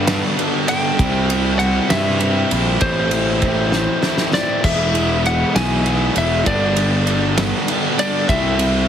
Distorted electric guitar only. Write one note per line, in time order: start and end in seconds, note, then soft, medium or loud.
0.07 0.36 G2 medium
0.07 0.37 D3 medium
0.07 0.38 G3 medium
0.07 0.38 B3 loud
0.07 0.39 D4 loud
0.37 0.67 G2 medium
0.37 0.68 D3 loud
0.37 0.68 G3 loud
0.37 0.69 B3 loud
0.37 0.69 D4 loud
0.68 0.97 G2 medium
0.68 0.97 D3 medium
0.68 0.98 G3 loud
0.68 0.98 B3 loud
0.68 0.98 D4 loud
0.98 1.27 C3 loud
0.98 1.28 G3 loud
0.98 1.29 C4 loud
0.98 1.30 E4 loud
1.28 1.57 C3 medium
1.28 1.58 G3 medium
1.28 1.59 C4 medium
1.28 1.60 E4 loud
1.58 1.88 C3 medium
1.58 1.88 G3 medium
1.58 1.89 C4 medium
1.58 1.90 E4 medium
1.89 2.18 C3 medium
1.89 2.19 G3 medium
1.89 2.19 C4 medium
1.89 2.21 E4 loud
2.19 2.49 C3 loud
2.19 2.50 G3 medium
2.19 2.50 C4 loud
2.19 2.52 E4 medium
2.50 2.79 C3 medium
2.50 2.80 G3 medium
2.50 2.80 C4 medium
2.50 2.82 E4 loud
2.81 3.09 A2 loud
2.81 3.11 E3 loud
2.81 3.11 A3 loud
2.81 3.11 C4 loud
2.81 3.13 E4 loud
3.10 3.40 A2 medium
3.10 3.42 E3 medium
3.10 3.41 A3 medium
3.10 3.42 C4 medium
3.10 3.43 E4 medium
3.41 3.71 A2 medium
3.41 3.72 E3 medium
3.41 3.72 A3 loud
3.41 3.73 C4 loud
3.41 3.73 E4 loud
3.72 4.01 A2 medium
3.72 4.02 E3 medium
3.72 4.02 A3 medium
3.72 4.03 C4 medium
3.72 4.03 E4 medium
4.02 4.31 A2 medium
4.02 4.32 E3 medium
4.02 4.32 A3 loud
4.02 4.33 C4 medium
4.02 4.34 E4 medium
4.33 4.62 A2 medium
4.33 4.62 E3 medium
4.33 4.62 A3 medium
4.33 4.62 C4 loud
4.33 4.63 E4 loud
4.63 4.92 E3 loud
4.63 4.93 G#3 loud
4.63 4.95 B3 loud
4.63 4.94 E4 loud
4.93 5.22 E3 medium
4.93 5.23 G#3 medium
4.93 5.25 B3 medium
4.93 5.24 E4 medium
5.24 5.53 E3 medium
5.24 5.54 G#3 medium
5.24 5.55 B3 medium
5.24 5.55 E4 medium
5.54 5.83 E3 medium
5.54 5.84 G#3 medium
5.54 5.85 B3 medium
5.54 5.85 E4 medium
5.84 6.13 E3 medium
5.84 6.14 G#3 medium
5.84 6.15 B3 medium
5.84 6.16 E4 medium
6.15 6.44 E3 medium
6.15 6.44 G#3 medium
6.15 6.45 B3 loud
6.15 6.45 E4 loud
6.45 6.74 G2 loud
6.45 6.75 D3 loud
6.45 6.77 G3 loud
6.45 6.76 B3 loud
6.45 6.77 D4 loud
6.75 7.05 G2 medium
6.75 7.06 D3 medium
6.75 7.07 G3 medium
6.75 7.07 B3 medium
6.75 7.07 D4 medium
7.06 7.35 G2 medium
7.06 7.36 D3 loud
7.06 7.36 G3 loud
7.06 7.37 B3 medium
7.06 7.37 D4 loud
7.36 7.66 G2 medium
7.36 7.67 D3 medium
7.36 7.67 G3 medium
7.36 7.68 B3 loud
7.36 7.68 D4 medium
7.67 7.96 G2 medium
7.67 7.97 D3 loud
7.67 7.97 G3 loud
7.67 7.98 B3 medium
7.67 7.98 D4 loud
7.97 8.26 G2 medium
7.97 8.27 D3 medium
7.97 8.27 G3 loud
7.97 8.27 B3 medium
7.97 8.27 D4 loud
8.27 8.56 C3 loud
8.27 8.57 G3 loud
8.27 8.58 C4 loud
8.27 8.59 E4 loud
8.57 8.87 C3 medium
8.57 8.88 G3 medium
8.57 8.88 C4 loud
8.57 8.88 E4 loud